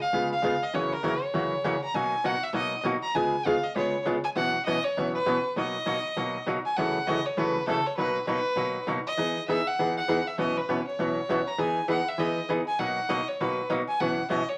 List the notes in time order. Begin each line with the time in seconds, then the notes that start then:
0.01 F5
0.13 C#3 G#3 B3 F4 G#4
0.32 F5
0.42 C#3 G#3 B3 F4 G#4
0.63 D#5
0.74 F#2 C#3 E3 A#3 C#4 F#4 C#5
0.93 A#4
1.03 F#2 C#3 E3 A#3 C#4 F#4
1.23 C#5
1.34 F#2 C#3 E3 A#3 C#4 F#4
1.64 F#2 C#3 E3 A#3 C#4 F#4
1.84 A#5
1.94 B2 F#3 A#3 D#4 F#4 G#5
2.24 B2 F#3 A#3 D#4 F#4 F#5
2.43 E5
2.53 B2 F#3 A#3 D#4 F#4 D#5
2.84 B2 F#3 A#3 D#4 F#4
3.03 A#5
3.15 C#3 G#3 B3 F4 G#4 G#5
3.45 C#3 G#3 B3 F4 G#4 F5
3.64 D#5
3.76 C#3 G#3 B3 F4 G#4 C#5
4.05 C#3 G#3 B3 F4 G#4
4.24 G#5
4.36 F#2 B2 E3 B3 C#4 F#4 F#5
4.65 F#2 B2 E3 B3 C#4 F#4 D#5
4.84 C#5
4.97 F#2 B2 E3 B3 C#4 F#4
5.14 B4
5.26 F#2 B2 E3 B3 C#4 F#4
5.56 B2 F#3 A#3 D#4 F#4 D#5
5.86 B2 F#3 A#3 D#4 F#4
6.17 B2 F#3 A#3 D#4 F#4
6.46 B2 F#3 A#3 D#4 F#4
6.66 G#5
6.77 F#2 C#3 E3 A3 C#4 F#4 F#5
7.07 F#2 C#3 E3 A3 C#4 F#4 D#5
7.26 C#5
7.37 F#2 C#3 E3 A3 C#4 F#4 B4
7.67 F#2 C#3 E3 A3 C#4 F#4 A4
7.86 C#5
7.97 B2 F#3 A#3 D#4 F#4 B4
8.27 B2 F#3 A#3 D#4 F#4 B4
8.56 B2 F#3 A#3 D#4 F#4
8.87 B2 F#3 A#3 D#4 F#4
9.07 D#5
9.18 E3 B3 D#4 G#4
9.48 E3 B3 D#4 G#4 E5
9.67 F#5
9.79 E3 B3 D#4 G#4
9.97 F#5
10.08 E3 B3 D#4 G#4
10.27 E5
10.38 F#2 B2 E3 B3 C#4 F#4 D#5
10.57 B4
10.69 F#2 B2 E3 B3 C#4 F#4
10.87 C#5
10.99 F#2 B2 E3 B3 C#4 F#4
11.29 F#2 B2 E3 B3 C#4 F#4
11.47 A#5
11.58 E3 B3 D#4 G#4 G#5
11.88 E3 B3 D#4 G#4 F#5
12.08 E5
12.18 E3 B3 D#4 G#4 D#5
12.49 E3 B3 D#4 G#4
12.68 G#5
12.79 B2 F#3 A#3 D#4 F#4 F#5
13.09 B2 F#3 A#3 D#4 F#4 D#5
13.28 C#5
13.40 B2 F#3 A#3 D#4 F#4 B4
13.70 B2 F#3 A#3 D#4 F#4
13.88 G#5
14.00 F#2 B2 E3 B3 C#4 F#4 F#5
14.30 F#2 B2 E3 B3 C#4 F#4 D#5
14.49 C#5